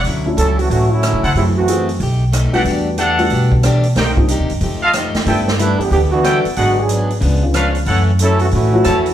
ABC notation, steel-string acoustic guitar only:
X:1
M:4/4
L:1/8
Q:"Swing" 1/4=184
K:D
V:1 name="Steel-string acoustic guitar"
[D,F,CE] z [D,F,CE] z [D,F,CE] z [D,F,CE] z | [F,,E,A,=C] z [F,,E,A,C] z [B,,A,^DG] z [B,,A,DG] z | [E,A,DG] z [E,A,DG] z [E,A,DG] z [E,A,DG] z | [=C,_B,_EG] z [C,B,EG] z [=F,A,EG] z [F,A,EG] z |
[G,B,EA] z [G,B,EA] z [G,B,EA] z [G,B,EA] z | [^G,,F,B,D] z [G,,F,B,D] z [C,^E,B,D] z [C,E,B,D] z | [F,,E,A,C] z [F,,E,A,C] z [F,,E,A,C] z [F,,E,A,C] z |]